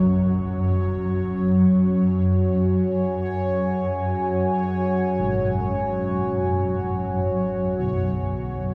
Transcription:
Already playing: synth drone F#2 F#3, ambient pad F#4 C#5, synth texture C#5
1.41 ambient pad G#5
5.19 church bells G#2
7.80 church bells B2

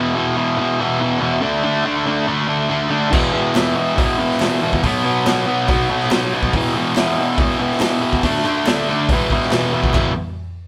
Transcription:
Already playing: distorted electric guitar E2 B2 E3
0.16 distorted electric guitar E2 B2 E3
0.36 distorted electric guitar E2 B2 E3
0.57 distorted electric guitar E2 B2 E3
0.81 distorted electric guitar E2 B2 E3
1.00 distorted electric guitar E2 B2 E3
1.21 distorted electric guitar E2 B2 E3
1.42 distorted electric guitar D3 A3 D4
1.64 distorted electric guitar D3 A3 D4
1.85 distorted electric guitar D3 A3 D4
2.06 distorted electric guitar D3 A3 D4
2.27 distorted electric guitar D3 A3 D4
2.48 distorted electric guitar D3 A3 D4
2.69 distorted electric guitar D3 A3 D4
2.90 distorted electric guitar D3 A3 D4
3.10 distorted electric guitar E2 B2 E3, kick, crash
3.33 distorted electric guitar E2 B2 E3
3.55 distorted electric guitar E2 B2 E3, snare, clap, open hi-hat
3.76 distorted electric guitar E2 B2 E3
3.97 distorted electric guitar E2 B2 E3, kick, open hi-hat
4.19 distorted electric guitar E2 B2 E3
4.31 snare
4.40 distorted electric guitar E2 B2 E3, snare, clap, open hi-hat
4.62 distorted electric guitar E2 B2 E3
4.73 kick
4.83 distorted electric guitar B2 F#3 B3, kick, open hi-hat
5.04 distorted electric guitar B2 F#3 B3
5.25 distorted electric guitar B2 F#3 B3, snare, clap, open hi-hat
5.48 distorted electric guitar B2 F#3 B3
5.68 distorted electric guitar B2 F#3 B3, kick, open hi-hat
5.90 distorted electric guitar B2 F#3 B3
6.00 snare
6.11 distorted electric guitar B2 F#3 B3, snare, clap, open hi-hat
6.33 distorted electric guitar B2 F#3 B3
6.43 kick
6.53 distorted electric guitar E2 B2 E3, kick, open hi-hat
6.65 snare
6.75 distorted electric guitar E2 B2 E3
6.96 distorted electric guitar E2 B2 E3, snare, clap, open hi-hat
7.18 distorted electric guitar E2 B2 E3
7.38 distorted electric guitar E2 B2 E3, kick, open hi-hat
7.59 distorted electric guitar E2 B2 E3
7.72 snare
7.80 distorted electric guitar E2 B2 E3, snare, clap, open hi-hat
8.01 distorted electric guitar E2 B2 E3
8.13 kick
8.23 distorted electric guitar D3 A3 D4, kick, open hi-hat
8.35 snare
8.45 distorted electric guitar D3 A3 D4, clap
8.66 distorted electric guitar D3 A3 D4, snare, clap, open hi-hat
8.89 distorted electric guitar D3 A3 D4
9.09 distorted electric guitar E2 B2 E3, kick, open hi-hat
9.30 distorted electric guitar E2 B2 E3, kick
9.41 snare
9.51 distorted electric guitar E2 B2 E3, snare, clap, open hi-hat
9.73 distorted electric guitar E2 B2 E3
9.83 kick
9.93 distorted electric guitar E2 B2 E3, kick, clap, floor tom, crash

